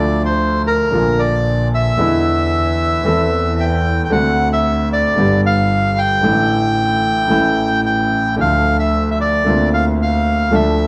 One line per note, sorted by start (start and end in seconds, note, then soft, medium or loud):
0.00 0.86 D2 medium
0.00 0.86 D3 medium
0.00 0.86 F3 soft
0.00 0.86 A3 soft
0.00 0.87 F4 soft
0.00 0.23 D5 medium
0.25 0.62 C5 medium
0.67 1.21 A#4 medium
0.90 1.93 A#1 medium
0.90 1.93 A#2 soft
0.90 1.92 D3 soft
0.90 1.93 F3 soft
0.90 1.94 A#3 soft
0.90 1.94 F4 soft
1.19 1.68 D5 medium
1.75 3.65 E5 medium
1.97 2.99 E2 medium
1.97 3.00 E2 medium
1.97 2.99 D3 soft
1.97 3.00 E3 medium
1.97 3.00 G#3 soft
1.97 3.00 B3 soft
1.97 3.01 E4 soft
3.03 4.06 E2 medium
3.03 3.05 E3 soft
3.03 4.06 E3 medium
3.03 4.06 A3 soft
3.03 4.06 C4 soft
3.07 4.07 A4 soft
3.60 4.02 G5 medium
4.05 4.11 G5 medium
4.10 5.12 D2 medium
4.10 5.12 D3 medium
4.10 5.12 A3 soft
4.10 5.13 C4 soft
4.10 5.13 F#4 medium
4.10 4.49 F#5 medium
4.53 4.89 E5 medium
4.93 5.41 D5 medium
5.15 6.18 G1 medium
5.15 6.18 G2 medium
5.15 6.17 D3 soft
5.15 6.18 G3 soft
5.15 6.18 B3 soft
5.15 6.19 G4 medium
5.46 6.00 F5 medium
5.98 7.81 G5 loud
6.21 7.25 A1 medium
6.21 7.25 A2 medium
6.21 7.24 D3 soft
6.21 7.24 E3 soft
6.21 7.25 A3 soft
6.26 7.26 E4 medium
7.28 8.32 A1 medium
7.28 8.32 A2 soft
7.28 8.31 C#3 soft
7.28 8.32 E3 soft
7.28 8.33 A3 soft
7.28 8.33 E4 medium
7.86 8.35 G5 medium
8.36 9.40 D2 medium
8.36 9.41 D2 medium
8.36 9.40 D3 medium
8.36 9.40 F3 soft
8.36 9.41 A3 soft
8.41 9.42 F4 soft
8.41 8.77 F5 medium
8.79 9.10 E5 medium
9.11 9.18 E5 medium
9.21 9.69 D5 medium
9.44 10.47 D2 medium
9.44 10.47 D3 medium
9.44 10.47 A#3 soft
9.44 10.47 C4 soft
9.44 10.48 F4 soft
9.74 9.85 F5 medium
10.02 10.55 F5 medium
10.50 10.87 D2 medium
10.50 10.87 D3 medium
10.50 10.87 F3 soft
10.50 10.87 A3 soft
10.50 10.87 D4 soft
10.54 10.87 A4 medium
10.54 10.87 E5 medium